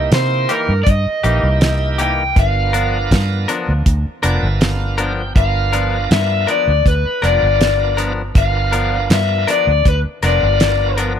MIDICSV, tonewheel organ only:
0, 0, Header, 1, 2, 480
1, 0, Start_track
1, 0, Tempo, 749064
1, 1515, Time_signature, 4, 2, 24, 8
1, 7174, End_track
2, 0, Start_track
2, 0, Title_t, "Tonewheel organ"
2, 0, Program_c, 0, 16
2, 0, Note_on_c, 0, 58, 71
2, 0, Note_on_c, 0, 63, 64
2, 0, Note_on_c, 0, 64, 65
2, 0, Note_on_c, 0, 67, 78
2, 356, Note_off_c, 0, 58, 0
2, 357, Note_off_c, 0, 63, 0
2, 359, Note_off_c, 0, 64, 0
2, 361, Note_off_c, 0, 67, 0
2, 788, Note_on_c, 0, 58, 66
2, 791, Note_on_c, 0, 63, 60
2, 794, Note_on_c, 0, 64, 66
2, 798, Note_on_c, 0, 67, 73
2, 1365, Note_off_c, 0, 58, 0
2, 1367, Note_off_c, 0, 63, 0
2, 1368, Note_off_c, 0, 64, 0
2, 1370, Note_off_c, 0, 67, 0
2, 1509, Note_on_c, 0, 59, 68
2, 1512, Note_on_c, 0, 62, 61
2, 1514, Note_on_c, 0, 65, 62
2, 1518, Note_on_c, 0, 70, 77
2, 2274, Note_off_c, 0, 59, 0
2, 2275, Note_off_c, 0, 62, 0
2, 2276, Note_off_c, 0, 65, 0
2, 2278, Note_off_c, 0, 70, 0
2, 2706, Note_on_c, 0, 59, 80
2, 2708, Note_on_c, 0, 62, 72
2, 2710, Note_on_c, 0, 74, 67
2, 2712, Note_on_c, 0, 65, 75
2, 2714, Note_on_c, 0, 70, 85
2, 2828, Note_off_c, 0, 74, 0
2, 2835, Note_on_c, 0, 76, 61
2, 2944, Note_off_c, 0, 76, 0
2, 2950, Note_on_c, 0, 77, 66
2, 3175, Note_off_c, 0, 77, 0
2, 3195, Note_on_c, 0, 79, 65
2, 3284, Note_off_c, 0, 59, 0
2, 3285, Note_off_c, 0, 62, 0
2, 3287, Note_off_c, 0, 65, 0
2, 3288, Note_off_c, 0, 70, 0
2, 3418, Note_off_c, 0, 79, 0
2, 3428, Note_on_c, 0, 59, 64
2, 3431, Note_on_c, 0, 62, 61
2, 3434, Note_on_c, 0, 65, 64
2, 3436, Note_on_c, 0, 70, 74
2, 4194, Note_off_c, 0, 59, 0
2, 4195, Note_off_c, 0, 62, 0
2, 4197, Note_off_c, 0, 65, 0
2, 4198, Note_off_c, 0, 70, 0
2, 4631, Note_on_c, 0, 59, 69
2, 4636, Note_on_c, 0, 62, 64
2, 4637, Note_on_c, 0, 65, 60
2, 4640, Note_on_c, 0, 70, 73
2, 5207, Note_off_c, 0, 59, 0
2, 5210, Note_off_c, 0, 62, 0
2, 5210, Note_off_c, 0, 65, 0
2, 5212, Note_off_c, 0, 70, 0
2, 5347, Note_on_c, 0, 59, 68
2, 5350, Note_on_c, 0, 62, 64
2, 5353, Note_on_c, 0, 65, 64
2, 5355, Note_on_c, 0, 70, 75
2, 6114, Note_off_c, 0, 59, 0
2, 6116, Note_off_c, 0, 62, 0
2, 6117, Note_off_c, 0, 65, 0
2, 6118, Note_off_c, 0, 70, 0
2, 6555, Note_on_c, 0, 59, 68
2, 6557, Note_on_c, 0, 62, 64
2, 6559, Note_on_c, 0, 65, 65
2, 6564, Note_on_c, 0, 70, 81
2, 7131, Note_off_c, 0, 59, 0
2, 7132, Note_off_c, 0, 62, 0
2, 7133, Note_off_c, 0, 65, 0
2, 7135, Note_off_c, 0, 70, 0
2, 7174, End_track
0, 0, End_of_file